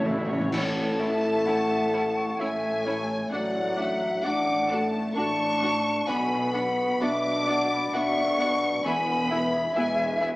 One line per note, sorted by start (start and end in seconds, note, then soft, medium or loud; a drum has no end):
0.00 0.43 A1 medium
0.00 0.43 A2 medium
0.00 0.53 A2 medium
0.00 0.09 A2 loud
0.00 0.18 E3 medium
0.00 0.57 E3 soft
0.00 0.18 C#4 medium
0.00 0.30 E4 medium
0.00 1.46 C#5 medium
0.00 1.69 E5 medium
0.00 2.16 C#6 soft
0.06 0.16 A2 loud
0.06 0.31 E4 medium
0.06 0.31 A4 medium
0.06 1.23 A4 soft
0.06 0.54 E5 medium
0.17 0.24 A2 loud
0.25 0.32 A2 loud
0.30 0.39 A2 loud
0.30 0.52 C#4 soft
0.30 0.99 E4 soft
0.30 0.54 C#5 medium
0.40 0.47 A2 loud
0.53 1.36 A1 medium
0.53 1.36 A2 medium
0.53 3.31 A2 medium
0.53 2.36 A3 medium
0.53 0.62 C#4 medium
0.53 0.62 E4 medium
0.53 0.62 C#5 medium
0.53 1.01 C#5 medium
0.53 2.36 A5 medium
0.53 concert bass drum medium
0.53 crash medium
0.77 3.36 E3 soft
1.00 1.08 C#4 medium
1.00 1.08 E4 medium
1.00 1.08 E4 soft
1.00 3.36 E4 medium
1.00 1.09 C#5 soft
1.00 1.47 E5 medium
1.24 3.08 A4 soft
1.46 2.29 A1 medium
1.46 2.29 A2 medium
1.46 1.54 C#4 medium
1.46 1.54 E4 medium
1.46 1.55 E4 soft
1.46 1.55 C#5 medium
1.46 2.85 C#5 medium
1.46 2.41 F#5 medium
1.70 2.62 E5 medium
1.93 2.01 C#4 medium
1.93 2.01 E4 soft
1.93 2.01 C#5 soft
2.17 3.36 C#6 soft
2.40 3.21 A1 medium
2.40 3.21 A2 medium
2.40 3.32 A3 medium
2.40 2.48 C#4 medium
2.40 2.48 E4 medium
2.40 2.49 E4 soft
2.40 2.48 C#5 medium
2.40 2.87 E5 medium
2.40 3.32 G#5 medium
2.63 3.36 E5 medium
2.85 2.94 C#4 medium
2.85 2.94 E4 soft
2.85 2.94 E4 medium
2.85 3.32 C#5 medium
2.85 3.36 C#5 soft
2.85 2.94 C#5 soft
3.09 4.00 A4 soft
3.31 4.13 A1 medium
3.31 4.13 A2 medium
3.31 6.11 A2 medium
3.31 4.23 F#3 medium
3.31 3.40 D4 medium
3.31 3.41 F#4 medium
3.31 3.78 D5 medium
3.31 4.22 F#5 medium
3.31 3.41 F#5 medium
3.55 6.11 A3 soft
3.77 3.85 D4 medium
3.77 5.83 D4 medium
3.77 3.87 F#4 soft
3.77 4.25 E5 medium
3.77 3.86 F#5 soft
4.01 4.45 A4 soft
4.23 5.04 A1 medium
4.23 5.04 A2 medium
4.23 4.70 D4 medium
4.23 4.32 D4 medium
4.23 4.33 F#4 medium
4.23 5.38 D5 medium
4.23 4.88 F#5 medium
4.23 4.33 F#5 medium
4.23 4.69 D6 medium
4.46 5.60 A4 medium
4.70 5.16 A3 medium
4.70 4.78 D4 medium
4.70 4.79 F#4 soft
4.70 4.79 F#5 soft
4.70 5.15 A5 soft
4.70 5.16 A5 medium
5.15 5.97 A1 medium
5.15 5.97 A2 medium
5.15 6.07 D4 medium
5.15 5.24 D4 medium
5.15 5.24 F#4 medium
5.15 5.24 F#5 medium
5.15 6.08 A5 medium
5.15 6.11 A5 medium
5.15 6.06 C#6 loud
5.39 7.23 D5 medium
5.62 5.70 D4 medium
5.62 5.71 F#4 medium
5.62 6.11 A4 soft
5.62 5.71 F#5 medium
5.85 6.53 D4 soft
6.07 6.89 B1 medium
6.07 8.88 B2 medium
6.07 6.89 B2 medium
6.07 7.00 B3 medium
6.07 6.16 B3 medium
6.07 6.16 D4 medium
6.07 6.16 F#4 medium
6.07 6.15 F#5 medium
6.07 6.53 G#5 medium
6.07 7.00 B5 medium
6.31 8.88 F#3 soft
6.53 6.63 B3 soft
6.53 8.88 D4 medium
6.53 6.63 D4 medium
6.53 6.61 F#4 soft
6.53 6.61 F#5 soft
6.53 6.99 F#5 medium
6.77 8.61 F#4 soft
7.00 7.82 B1 medium
7.00 7.83 B2 medium
7.00 7.09 B3 medium
7.00 7.93 D4 medium
7.00 7.09 D4 medium
7.00 7.08 F#4 medium
7.00 8.38 B4 medium
7.00 7.49 E5 medium
7.00 7.08 F#5 medium
7.00 7.94 D6 medium
7.24 8.15 D5 medium
7.46 7.56 B3 medium
7.46 7.55 D4 medium
7.46 7.54 F#4 medium
7.46 7.96 D5 medium
7.46 7.54 F#5 soft
7.46 7.92 F#5 soft
7.71 10.36 B5 medium
7.93 8.74 B1 medium
7.93 8.74 B2 medium
7.93 8.02 B3 medium
7.93 8.02 D4 medium
7.93 8.83 D4 medium
7.93 8.01 F#4 medium
7.93 8.41 E5 medium
7.93 8.01 F#5 medium
7.93 8.88 F#5 medium
7.93 8.85 C#6 medium
8.17 8.88 D5 medium
8.39 8.47 B3 medium
8.39 8.48 D4 soft
8.39 8.47 F#4 soft
8.39 9.74 B4 soft
8.39 8.83 F#5 medium
8.39 8.48 F#5 medium
8.62 8.88 F#4 soft
8.84 9.64 E1 medium
8.84 9.65 E2 medium
8.84 10.36 E3 medium
8.84 9.58 B3 medium
8.84 8.94 B3 medium
8.84 8.93 E4 medium
8.84 8.94 G#4 medium
8.84 8.94 E5 medium
8.84 9.31 G#5 medium
8.84 9.75 B5 medium
9.07 10.36 B3 soft
9.30 9.38 B3 medium
9.30 10.36 E4 medium
9.30 9.38 E4 medium
9.30 9.39 G#4 medium
9.30 10.36 E5 medium
9.30 9.39 E5 medium
9.53 10.36 G#4 medium
9.75 10.36 E1 medium
9.75 10.36 E2 medium
9.75 10.19 G#3 medium
9.75 9.84 B3 medium
9.75 9.83 E4 medium
9.75 9.83 G#4 medium
9.75 10.36 B4 medium
9.75 9.83 E5 medium
9.75 10.19 G#5 medium
9.97 10.36 E5 medium
10.20 10.29 B3 medium
10.20 10.29 E4 medium
10.20 10.28 G#4 soft
10.20 10.29 E5 medium
10.20 10.36 G#5 medium